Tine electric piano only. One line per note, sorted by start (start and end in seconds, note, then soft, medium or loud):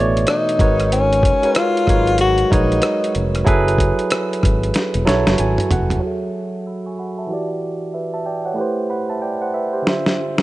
0.00 0.62 B2 loud
0.00 0.60 E3 medium
0.00 0.61 A3 loud
0.00 0.61 D4 loud
0.00 0.62 E4 loud
0.00 0.61 C#5 loud
0.00 0.60 D5 medium
0.59 1.24 G#3 medium
0.59 1.24 D#4 medium
0.59 1.24 F#4 medium
0.59 1.25 A#4 medium
0.59 1.25 B4 medium
0.59 1.25 C#5 medium
1.42 1.80 G#3 medium
1.42 1.80 D#4 medium
1.42 1.80 F#4 medium
1.42 1.81 A#4 medium
1.42 1.81 B4 medium
1.42 1.82 C#5 medium
1.87 2.42 F#3 medium
1.87 2.41 G#3 medium
1.87 2.41 D#4 medium
1.87 2.42 A#4 medium
1.87 2.43 B4 medium
1.87 2.43 C#5 medium
2.50 3.31 G#3 medium
2.50 3.31 D#4 medium
2.50 3.32 F#4 medium
2.50 3.32 A#4 medium
2.50 3.32 B4 medium
2.50 3.33 C#5 medium
3.45 4.51 F#3 loud
3.45 4.51 E4 loud
3.45 4.52 G#4 loud
3.45 4.52 A4 loud
3.45 4.52 B4 loud
5.05 5.86 F#3 medium
5.05 5.87 E4 medium
5.05 5.87 F#4 medium
5.05 5.88 A4 medium
5.05 5.88 C#5 medium
5.05 5.36 A5 medium
5.40 5.69 G#5 medium
5.72 6.01 F#5 medium
6.00 7.26 F#3 medium
6.00 7.27 F#4 medium
6.00 7.28 G#4 medium
6.05 7.29 A4 medium
6.05 6.67 E5 medium
6.67 6.85 B5 soft
6.67 6.85 E6 soft
6.86 6.98 G#5 soft
6.86 6.98 C#6 medium
6.99 7.17 F#5 soft
6.99 7.17 B5 soft
7.18 7.48 E5 soft
7.18 7.48 A5 soft
7.27 8.53 E3 medium
7.27 8.54 E4 soft
7.27 8.55 F#4 medium
7.32 8.56 G4 soft
7.32 7.94 D5 medium
7.94 8.13 B4 soft
7.94 8.12 E5 soft
8.14 8.25 E5 soft
8.14 8.25 A5 medium
8.26 8.45 D5 soft
8.26 8.44 G5 medium
8.45 8.76 C#5 soft
8.45 8.76 F#5 medium
8.54 9.81 A3 medium
8.54 9.82 E4 medium
8.54 8.89 G4 medium
8.59 8.89 B4 medium
8.59 8.90 C5 medium
8.90 9.09 F#5 soft
8.90 9.08 B5 soft
9.10 9.21 E5 soft
9.10 9.21 A5 medium
9.22 9.41 D5 soft
9.22 9.40 G5 medium
9.42 9.53 C5 soft
9.42 9.53 F#5 medium
9.54 9.73 B4 soft
9.54 9.72 E5 medium
9.73 10.04 G4 soft
9.73 9.86 C5 soft
9.82 10.42 D3 medium
9.82 10.42 D4 medium
9.82 10.42 F4 soft
9.88 10.42 C5 soft
9.88 10.42 E5 medium